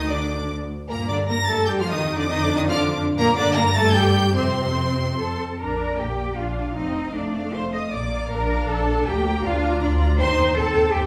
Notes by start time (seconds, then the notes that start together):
Already playing: D2 D#3 D#4 D#6
0.10 D3 D4 D5 D6
0.89 G2 A#2 A#3 A#4 A#5
1.08 D3 D4 D5 D6
1.28 A#3 A#4 A#5 A#6
1.47 A3 A4 A5 A6
1.66 G3 G4 G5 G6
1.79 F3 F4 F5 F6
1.91 D#3 D#4 D#5 D#6
2.04 F2
2.17 D3 D4 D5 D6
2.30 D#3 D#4 D#5 D#6
2.43 D3 D4 D5 D6
2.55 D#3 D#4 D#5 D#6
2.68 D3 F3 D4 F4 D5 D6 F6
3.18 G2 A#2 A#3 A#4 A#5
3.37 D3 D4 D5 D6
3.55 A#3 A#4 A#5 A#6
3.75 A3 A4 A5 A6
3.95 G3 G4 G5 G6
4.36 F2 C3 C4 C5 C6
5.20 A4 A5
5.60 A#1 D4 A#4 A#5
5.80 D5
5.99 A#1 A#3 G4 G5
6.18 D5
6.37 A#1 D4 F4 F5
6.57 D5
6.75 F1 C4 D#4 D#5 F5
6.97 F5
7.15 F1 A3 D4 D5
7.35 F5
7.54 F1 C5 C6
7.73 D#5 F5 D#6
7.92 A#1 A#3 D5 D6
8.13 F5
8.31 A#1 D4 A#4 A#5
8.50 F5
8.69 A#1 A4 A5
8.90 F5
9.06 D2 A#3 G4 G5 A#5
9.25 A#5
9.44 D2 D4 F4 F5
9.62 A#5
9.82 D2 D4 F4 D5
10.00 A#5
10.19 D#2 D#4 C5 G5 C6
10.38 D#2 G5
10.56 D#2 C4 A4 G5 A5
10.75 D#2 G5
10.94 D#2 C4 G4 G5